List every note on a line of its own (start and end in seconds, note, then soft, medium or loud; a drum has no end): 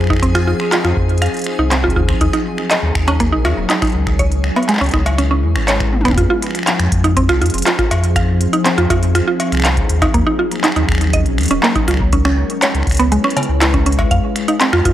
0.00 0.54 F2 medium
0.00 2.21 F3 medium
0.00 2.21 C4 medium
0.00 4.19 D#4 medium
0.00 3.00 G#4 medium
0.00 6.19 G#4 medium
0.00 2.21 C5 medium
0.00 6.19 G#5 medium
0.00 finger snap soft
0.04 finger snap soft
0.07 0.20 D#4 loud
0.07 finger snap soft
0.07 kick loud
0.10 finger snap soft
0.13 finger snap soft
0.16 finger snap soft
0.20 0.32 C4 loud
0.20 finger snap soft
0.20 kick loud
0.20 closed hi-hat medium
0.35 0.46 F4 loud
0.35 finger snap medium
0.35 closed hi-hat soft
0.47 0.57 F4 medium
0.60 finger snap soft
0.72 0.82 F4 medium
0.72 clap loud
0.72 closed hi-hat medium
0.85 0.93 F2 medium
0.85 0.96 F4 medium
0.85 finger snap medium
0.97 1.28 F2 loud
0.97 kick medium
1.09 closed hi-hat soft
1.18 closed hi-hat soft
1.22 1.34 F5 medium
1.22 finger snap medium
1.22 closed hi-hat medium
1.26 closed hi-hat soft
1.34 closed hi-hat soft
1.37 closed hi-hat soft
1.39 closed hi-hat soft
1.42 closed hi-hat soft
1.44 finger snap soft
1.44 closed hi-hat soft
1.59 1.90 C2 loud
1.59 1.69 D#4 loud
1.71 1.81 C4 loud
1.71 finger snap medium
1.71 clap loud
1.71 closed hi-hat medium
1.84 1.95 F4 loud
1.84 kick soft
1.88 kick soft
1.88 closed hi-hat soft
1.92 kick medium
1.96 2.14 D#2 medium
1.96 2.06 F4 medium
1.96 kick medium
2.00 kick medium
2.04 kick medium
2.09 finger snap medium
2.09 kick loud
2.21 2.30 D#2 loud
2.21 4.19 F#3 medium
2.21 2.31 D#4 medium
2.21 kick loud
2.21 closed hi-hat medium
2.33 2.45 D#4 medium
2.33 finger snap medium
2.33 closed hi-hat soft
2.57 6.18 C#4 medium
2.57 finger snap soft
2.71 2.82 D#5 medium
2.71 clap loud
2.71 closed hi-hat medium
2.83 2.92 D#2 loud
2.83 4.19 A#4 medium
2.95 3.34 D#2 medium
2.95 finger snap medium
2.95 kick medium
3.08 3.17 C#4 loud
3.08 6.18 C#5 medium
3.08 closed hi-hat medium
3.08 cowbell loud
3.20 3.30 A#3 loud
3.20 finger snap medium
3.20 kick medium
3.20 closed hi-hat medium
3.32 3.46 A#1 medium
3.32 3.44 D#4 loud
3.45 3.54 D#2 loud
3.45 3.55 F4 medium
3.45 finger snap medium
3.45 cowbell loud
3.57 3.66 D#1 medium
3.70 3.79 D#4 medium
3.70 clap loud
3.70 closed hi-hat medium
3.82 3.94 D#4 medium
3.82 finger snap medium
3.82 kick loud
3.82 closed hi-hat soft
3.85 closed hi-hat soft
3.87 closed hi-hat soft
3.90 closed hi-hat soft
3.94 4.51 C#2 medium
4.07 finger snap medium
4.07 kick medium
4.19 6.17 G#3 medium
4.19 4.31 C#5 medium
4.19 kick loud
4.19 closed hi-hat medium
4.32 closed hi-hat soft
4.44 finger snap medium
4.49 6.17 E4 medium
4.56 4.66 B3 loud
4.56 cowbell medium
4.63 closed hi-hat soft
4.69 4.78 G#3 loud
4.69 finger snap medium
4.69 clap medium
4.69 closed hi-hat medium
4.73 clap medium
4.77 clap loud
4.81 4.90 C#2 medium
4.81 4.93 C#4 loud
4.81 closed hi-hat soft
4.84 closed hi-hat soft
4.86 closed hi-hat soft
4.89 closed hi-hat soft
4.91 5.45 C#2 loud
4.91 5.03 D#4 medium
4.91 finger snap medium
4.91 kick medium
4.91 closed hi-hat soft
5.06 6.18 B4 medium
5.06 closed hi-hat medium
5.06 cowbell loud
5.18 5.28 C#4 medium
5.18 finger snap medium
5.18 closed hi-hat medium
5.31 5.43 C#4 medium
5.43 5.57 E2 loud
5.55 6.07 G#1 medium
5.55 finger snap medium
5.68 5.80 C#5 medium
5.68 clap loud
5.68 closed hi-hat medium
5.80 finger snap medium
5.80 kick loud
5.80 closed hi-hat soft
5.93 mid tom soft
6.01 mid tom medium
6.05 6.14 B1 loud
6.05 6.15 B3 loud
6.05 finger snap medium
6.05 kick soft
6.05 closed hi-hat soft
6.08 finger snap soft
6.08 kick medium
6.08 mid tom medium
6.10 finger snap soft
6.10 kick medium
6.13 finger snap soft
6.13 kick medium
6.15 6.26 F2 loud
6.15 kick medium
6.15 closed hi-hat medium
6.18 10.14 F3 medium
6.18 6.27 F4 medium
6.18 kick loud
6.30 6.42 F4 medium
6.42 finger snap soft
6.42 closed hi-hat medium
6.47 finger snap soft
6.51 10.14 C4 medium
6.51 finger snap soft
6.55 12.13 D#4 medium
6.55 finger snap soft
6.55 closed hi-hat medium
6.59 finger snap soft
6.63 finger snap soft
6.67 6.79 F5 medium
6.67 clap loud
6.67 closed hi-hat medium
6.73 10.94 G#4 medium
6.80 6.88 F2 medium
6.80 finger snap medium
6.80 closed hi-hat soft
6.92 7.31 F2 loud
6.92 kick medium
6.92 closed hi-hat medium
7.04 7.14 D#4 loud
7.04 closed hi-hat medium
7.17 7.26 C4 loud
7.17 kick medium
7.17 closed hi-hat medium
7.26 7.43 C2 medium
7.26 7.40 F4 loud
7.26 10.14 C5 medium
7.26 finger snap medium
7.26 closed hi-hat soft
7.41 7.50 F2 loud
7.41 7.51 F4 medium
7.41 closed hi-hat soft
7.46 closed hi-hat soft
7.50 7.63 F1 loud
7.50 closed hi-hat medium
7.54 closed hi-hat medium
7.58 closed hi-hat medium
7.62 closed hi-hat medium
7.66 7.76 F4 medium
7.66 clap loud
7.66 closed hi-hat medium
7.79 7.91 F4 medium
7.79 finger snap medium
7.79 kick loud
7.79 closed hi-hat soft
7.91 8.47 F2 medium
7.91 closed hi-hat medium
7.91 cowbell loud
8.04 closed hi-hat medium
8.16 8.28 F5 medium
8.16 finger snap medium
8.16 kick loud
8.16 closed hi-hat medium
8.41 closed hi-hat medium
8.53 8.63 D#4 loud
8.53 closed hi-hat medium
8.65 8.75 C4 loud
8.65 finger snap medium
8.65 clap loud
8.65 closed hi-hat medium
8.78 8.87 F2 loud
8.78 8.89 F4 loud
8.78 closed hi-hat soft
8.90 9.22 F2 loud
8.90 9.00 F4 medium
8.90 kick medium
8.90 closed hi-hat medium
8.90 cowbell medium
9.03 closed hi-hat medium
9.15 9.25 F4 medium
9.15 finger snap medium
9.15 closed hi-hat medium
9.28 9.39 F4 medium
9.40 closed hi-hat medium
9.40 cowbell medium
9.52 9.84 C2 loud
9.52 finger snap soft
9.52 closed hi-hat medium
9.55 finger snap soft
9.57 finger snap medium
9.60 finger snap medium
9.62 9.77 F5 medium
9.62 finger snap medium
9.62 clap loud
9.62 closed hi-hat medium
9.77 kick loud
9.77 closed hi-hat soft
9.89 10.07 D#2 loud
9.89 closed hi-hat medium
10.02 10.12 D#4 loud
10.02 finger snap medium
10.02 kick loud
10.02 closed hi-hat medium
10.02 cowbell medium
10.14 10.23 D#2 loud
10.14 12.13 F#3 medium
10.14 10.24 A#3 loud
10.14 kick loud
10.14 closed hi-hat medium
10.27 14.11 C#4 medium
10.27 10.38 D#4 loud
10.39 10.49 F4 medium
10.51 finger snap soft
10.51 closed hi-hat soft
10.56 finger snap soft
10.60 finger snap soft
10.64 10.73 D#4 medium
10.64 finger snap soft
10.64 clap loud
10.64 closed hi-hat medium
10.68 finger snap soft
10.72 finger snap soft
10.76 10.85 D#2 loud
10.76 10.88 D#4 medium
10.76 closed hi-hat soft
10.89 11.27 D#2 medium
10.89 finger snap medium
10.89 kick medium
10.92 finger snap medium
10.95 14.11 C#5 medium
10.95 finger snap medium
10.98 finger snap soft
11.01 12.13 A#4 medium
11.01 finger snap soft
11.01 closed hi-hat medium
11.04 finger snap soft
11.07 finger snap soft
11.10 11.25 D#5 medium
11.10 finger snap soft
11.10 kick medium
11.10 closed hi-hat medium
11.26 11.40 A#1 medium
11.26 closed hi-hat soft
11.38 11.47 D#2 medium
11.38 finger snap medium
11.38 closed hi-hat soft
11.41 closed hi-hat soft
11.43 closed hi-hat medium
11.46 closed hi-hat medium
11.48 closed hi-hat medium
11.51 11.60 D#1 loud
11.51 11.60 C#4 loud
11.51 closed hi-hat medium
11.63 11.73 A#3 loud
11.63 clap loud
11.75 11.87 D#4 loud
11.75 kick loud
11.75 closed hi-hat soft
11.88 12.44 C#2 medium
11.88 11.98 F4 medium
11.88 finger snap soft
11.88 closed hi-hat medium
11.91 finger snap soft
11.94 finger snap soft
11.97 finger snap soft
11.97 kick loud
12.13 14.93 G#3 medium
12.13 12.22 C#4 medium
12.13 kick loud
12.13 closed hi-hat medium
12.25 12.37 C#4 medium
12.25 finger snap medium
12.50 closed hi-hat soft
12.62 12.74 C#5 medium
12.62 clap loud
12.62 closed hi-hat medium
12.72 12.83 C#2 medium
12.72 14.11 E4 medium
12.72 finger snap soft
12.72 closed hi-hat soft
12.83 finger snap soft
12.87 13.19 C#2 loud
12.87 14.11 B4 medium
12.87 kick medium
12.87 closed hi-hat soft
12.90 finger snap soft
12.90 closed hi-hat soft
12.92 closed hi-hat medium
12.95 closed hi-hat medium
12.97 13.09 B3 loud
12.97 closed hi-hat medium
12.99 closed hi-hat medium
13.12 13.21 G#3 loud
13.12 closed hi-hat medium
13.24 13.36 C#4 loud
13.24 finger snap medium
13.30 closed hi-hat soft
13.37 13.46 C#3 medium
13.37 closed hi-hat medium
13.37 cowbell medium
13.43 closed hi-hat medium
13.49 14.05 C#2 loud
13.61 13.71 E4 medium
13.61 finger snap medium
13.61 clap loud
13.61 closed hi-hat medium
13.74 13.83 C#4 medium
13.74 kick loud
13.74 closed hi-hat soft
13.86 13.96 C#4 medium
13.86 closed hi-hat medium
13.92 closed hi-hat medium
13.99 kick loud
13.99 cowbell medium
14.11 14.20 F2 loud
14.11 14.23 F5 medium
14.11 kick loud
14.11 closed hi-hat medium
14.36 finger snap medium
14.36 closed hi-hat medium
14.44 14.93 D#4 medium
14.48 14.58 D#4 medium
14.48 closed hi-hat soft
14.53 14.93 F4 medium
14.61 14.70 C4 loud
14.61 clap loud
14.61 closed hi-hat medium
14.73 14.82 F2 medium
14.73 14.84 F4 loud
14.73 14.93 C5 medium
14.73 finger snap medium
14.85 14.93 F2 loud
14.85 14.93 F4 medium
14.85 kick medium
14.85 closed hi-hat medium